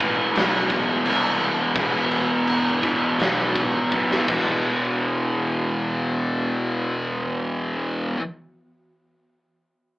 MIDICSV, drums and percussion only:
0, 0, Header, 1, 2, 480
1, 0, Start_track
1, 0, Tempo, 700935
1, 1205, Time_signature, 4, 2, 24, 8
1, 1205, Tempo, 719424
1, 2645, Tempo, 742574
1, 6568, End_track
2, 0, Start_track
2, 0, Title_t, "Drums"
2, 3, Note_on_c, 9, 36, 90
2, 4, Note_on_c, 9, 49, 67
2, 72, Note_off_c, 9, 36, 0
2, 72, Note_off_c, 9, 49, 0
2, 243, Note_on_c, 9, 49, 98
2, 257, Note_on_c, 9, 38, 122
2, 311, Note_off_c, 9, 49, 0
2, 326, Note_off_c, 9, 38, 0
2, 475, Note_on_c, 9, 49, 76
2, 480, Note_on_c, 9, 36, 90
2, 544, Note_off_c, 9, 49, 0
2, 548, Note_off_c, 9, 36, 0
2, 723, Note_on_c, 9, 49, 109
2, 791, Note_off_c, 9, 49, 0
2, 961, Note_on_c, 9, 49, 74
2, 1029, Note_off_c, 9, 49, 0
2, 1201, Note_on_c, 9, 49, 92
2, 1203, Note_on_c, 9, 36, 121
2, 1268, Note_off_c, 9, 49, 0
2, 1270, Note_off_c, 9, 36, 0
2, 1336, Note_on_c, 9, 38, 39
2, 1402, Note_off_c, 9, 38, 0
2, 1440, Note_on_c, 9, 49, 76
2, 1507, Note_off_c, 9, 49, 0
2, 1681, Note_on_c, 9, 49, 77
2, 1748, Note_off_c, 9, 49, 0
2, 1920, Note_on_c, 9, 36, 83
2, 1921, Note_on_c, 9, 49, 66
2, 1987, Note_off_c, 9, 36, 0
2, 1988, Note_off_c, 9, 49, 0
2, 2162, Note_on_c, 9, 49, 84
2, 2176, Note_on_c, 9, 38, 109
2, 2229, Note_off_c, 9, 49, 0
2, 2243, Note_off_c, 9, 38, 0
2, 2403, Note_on_c, 9, 36, 98
2, 2407, Note_on_c, 9, 49, 72
2, 2470, Note_off_c, 9, 36, 0
2, 2474, Note_off_c, 9, 49, 0
2, 2646, Note_on_c, 9, 36, 79
2, 2710, Note_off_c, 9, 36, 0
2, 2771, Note_on_c, 9, 38, 76
2, 2836, Note_off_c, 9, 38, 0
2, 2878, Note_on_c, 9, 57, 83
2, 2881, Note_on_c, 9, 36, 119
2, 2943, Note_off_c, 9, 57, 0
2, 2946, Note_off_c, 9, 36, 0
2, 6568, End_track
0, 0, End_of_file